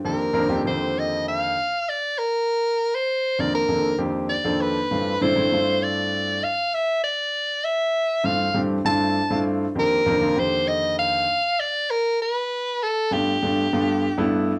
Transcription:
<<
  \new Staff \with { instrumentName = "Soprano saxophone" } { \time 4/4 \key f \lydian \tempo 4 = 99 bes'4 c''8 ees''8 f''4 d''8 bes'8~ | bes'8. c''8. d''16 bes'8. r8 d''8 b'8~ | b'8 c''4 d''4 f''8 e''8 d''8~ | d''8 e''4 f''8 r8 a''4 r8 |
bes'4 c''8 ees''8 f''4 d''8 bes'8 | b'4 a'8 g'2 r8 | }
  \new Staff \with { instrumentName = "Grand piano" } { \time 4/4 \key f \lydian <f, ees bes c' d' g'>16 r16 <f, ees bes c' d' bes'>16 <f, ees bes c' d' g'>16 <f, d ees bes c' g'>4. r4. | r4. <f, ees bes c' d' bes'>16 r16 <f, ees bes c' d' a'>16 r16 <f, ees bes c' d' g'>8 r16 <f, ees bes c' d' a'>8 r16 | <g, e a c' d' f'>16 r16 <g, e a c' d' e'>16 <g, e a c' d' e'>16 <g, a c' d' e' f'>4. r4. | r4. <g, e a c' d' f'>16 r16 <g, e a c' d' g'>16 r16 <g, a c' d' e' f'>8 r16 <g, a c' d' e' f'>8 r16 |
<f, ees bes c' d' g'>16 r16 <f, ees bes c' d' bes'>16 <f, ees bes c' d' f'>16 <f, d ees bes c' g'>4. r4. | r4. <g, a b d' f'>16 r16 <g, a b d' f'>16 r16 <g, a b d' f'>8 r16 <g, a b d' e'>8 r16 | }
>>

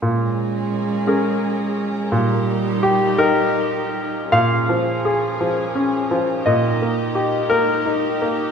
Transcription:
<<
  \new Staff \with { instrumentName = "String section" } { \time 6/8 \key bes \dorian \tempo 4. = 57 << { bes'2.~ | bes'2. | bes'2.~ | bes'2. | } \\ { <des' aes'>2. | <ees' g'>2. | <des' aes'>2. | <ees' g'>2. | } >> }
  \new Staff \with { instrumentName = "Grand piano" } { \time 6/8 \key bes \dorian r2. | r4 g'8 bes'4. | f''2. | ees''4 r8 bes'4. | }
  \new Staff \with { instrumentName = "Grand piano" } { \time 6/8 \key bes \dorian bes,4. <des' aes' bes'>4. | bes,4. <ees' g'>4. | bes,8 f8 aes'8 f8 des'8 f8 | bes,8 bes8 g'8 bes8 ees'8 bes8 | }
  \new Staff \with { instrumentName = "Cello" } { \clef bass \time 6/8 \key bes \dorian aes2. | g2~ g8 r8 | r2. | r2. | }
>>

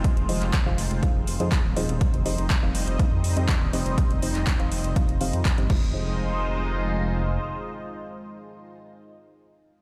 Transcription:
<<
  \new Staff \with { instrumentName = "Synth stab" } { \time 4/4 \key f \minor \tempo 4 = 122 r8 <f ees' f' aes' c'' ees''>8. <f ees' f' aes' c'' f''>16 r8 <f ees' f' aes' c'' f''>8 r16 <f ees' f' aes' c'' ees''>16 r8 <f ees' f' aes' c'' ees''>16 r16 | r8 <f c' ees' g' c'' ees''>8. <f c' ees' g' c'' f''>16 r8 <f c' ees' g' c'' f''>8 r16 <f c' ees' g' c'' ees''>16 r8 <f c' ees' g' c'' ees''>16 r16 | r8 <f c' ees' g' c'' ees''>8. <f c' ees' g' c'' f''>16 r8 <f c' ees' g' c'' f''>8 <f c' ees' g' c'' f''>16 r8 <f c' ees' g' c'' ees''>16 <ees' f' aes' c'' ees''>8~ | <ees' f' aes' c'' ees''>1~ |
<ees' f' aes' c'' ees''>1 | }
  \new Staff \with { instrumentName = "Analog synth pad" } { \time 4/4 \key f \minor <aes c' ees' f' c''>1 | <g c' ees' c'' ees''>1~ | <g c' ees' c'' ees''>2.~ <g c' ees' c'' ees''>8 <aes ees' f' c'' ees''>8~ | <aes ees' f' c'' ees''>1~ |
<aes ees' f' c'' ees''>1 | }
  \new Staff \with { instrumentName = "Detuned saw bass" } { \clef bass \time 4/4 \key f \minor r16 f,,16 f,,16 f,,16 r16 f,,16 f,,16 f,,16 r16 f,,16 f,,16 f,16 r16 ees,,16 ees,,16 ees,,16 | r16 f,,16 f,,16 f,,16 r16 f,,16 f,,16 f,,16 r16 f,16 f,16 f,16 r16 ees,,16 f,,16 f,,16 | r16 f,,16 f,,16 f,,16 r16 f,,16 f,,16 f,,16 r16 f,,16 f,,16 f,16 r16 g,,16 f,,8~ | f,,2. r4 |
r1 | }
  \new DrumStaff \with { instrumentName = "Drums" } \drummode { \time 4/4 <hh bd>16 hh16 hho16 <hc hh>16 <hc hh bd>8 hho16 hh16 <hh bd>8 hho16 hh16 <hc hh bd>8 hho16 hh16 | <hh bd>16 hh16 hho16 hh16 <hc hh bd>8 hho16 hh16 <hh bd>8 hho16 hh16 <hc hh bd>8 hho16 hh16 | <hh bd>16 hh16 hho16 <hc hh>16 <hc hh bd>16 hh16 hho16 hh16 <hh bd>16 hh16 hho16 hh16 <hc hh bd>16 hh16 <cymc bd>8 | r4 r4 r4 r4 |
r4 r4 r4 r4 | }
>>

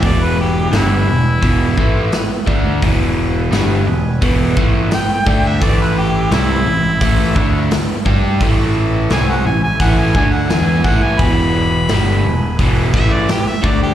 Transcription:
<<
  \new Staff \with { instrumentName = "Harmonica" } { \time 4/4 \key e \mixolydian \tempo 4 = 86 d''16 b'16 g'8 e'2 r4 | r2. g''8 g''16 e''16 | d''16 b'16 g'8 e'2 r4 | r4 gis''16 fis''16 gis''16 gis''16 fis''16 gis''16 gis''16 fis''16 gis''16 gis''16 fis''16 gis''16 |
b''2 r8 e''16 d''16 g'16 e''16 d''16 g'16 | }
  \new Staff \with { instrumentName = "Tonewheel organ" } { \time 4/4 \key e \mixolydian <b e' gis'>4 <b e' gis''>8 <b e' gis'>2 r8 | <b e' gis'>4 <b e' gis''>8 <b e' gis'>2 r8 | <a e' a'>4 <a e' a'>8 <a e' a'>2 r8 | <a e' a'>4 <a e' gis''>8 <a e' a'>2 r8 |
<b e' gis'>4 <b e' gis''>8 <b e' gis'>2 r8 | }
  \new Staff \with { instrumentName = "Overdriven electric guitar" } { \clef bass \time 4/4 \key e \mixolydian <e, b, e>4 <g, d g>8 <e, b,>8 <e, b, e>8 <a, e a>8 r8 <d a d'>8 | <e, b, e>4 <g, d g>8 <e, b,>8 <e, b, e>8 <a, e a>8 r8 <d a d'>8 | <a, e a>4 <c g c'>8 <a, e>8 <a, e a>8 <d a d'>8 r8 <g d' g'>8 | <a, e a>4 <c g c'>8 <a, e>8 <a, e a>8 <d a d'>8 <e b e'>8 <a, e a>8 |
<e, b, e>4 <g, d g>8 <e, b,>8 <e, b, e>8 <a, e a>8 r8 <d a d'>8 | }
  \new Staff \with { instrumentName = "Picked electric bass" } { \clef bass \time 4/4 \key e \mixolydian e,,4 g,,8 e,,8 e,,8 a,,8 r8 d,8 | e,,4 g,,8 e,,8 e,,8 a,,8 r8 d,8 | a,,4 c,8 a,,8 a,,8 d,8 r8 g,8 | a,,4 c,8 a,,8 a,,8 d,8 e,8 a,,8 |
e,,4 g,,8 e,,8 e,,8 a,,8 r8 d,8 | }
  \new DrumStaff \with { instrumentName = "Drums" } \drummode { \time 4/4 <hho bd>4 <hho sn>4 <hho bd>8 bd8 <hho sn>8 bd8 | <hho bd>4 <hho sn>4 <hho bd>8 bd8 <hho sn>8 bd8 | <hho bd>4 <hho sn>4 <hho bd>8 bd8 <hho sn>8 bd8 | <hho bd>4 <hho sn>4 <hho bd>8 bd8 <hho sn>8 bd8 |
<hho bd>4 <hho sn>4 <hho bd>8 bd8 <hho sn>8 bd8 | }
>>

